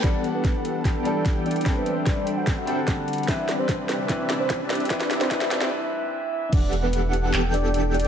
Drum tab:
CC |--------------------------------|--------------------------------|--------------------------------|--------------------------------|
HH |x---x---x---x---x---x---x---xxxx|x---x---x---x---x---x---x---xxxx|x---x---x---x---x---x---x---xxxx|x---x---x---x-------------------|
CP |--------------------------------|--------------------------------|--------------------------------|--------------------------------|
SD |o-------o-------o-------o-------|o-------o-------o-------o-------|o---o---o---o---o---o---o---o---|o-o-o-o-o-o-o-o-----------------|
BD |o-------o-------o-------o-------|o-------o-------o-------o-------|o-------o-------o-------o-------|o-------o-----------------------|

CC |x-------------------------------|
HH |x---x---x---x---x---x---x---xxx-|
CP |----------------x---------------|
SD |--------------------------------|
BD |o-------------------------------|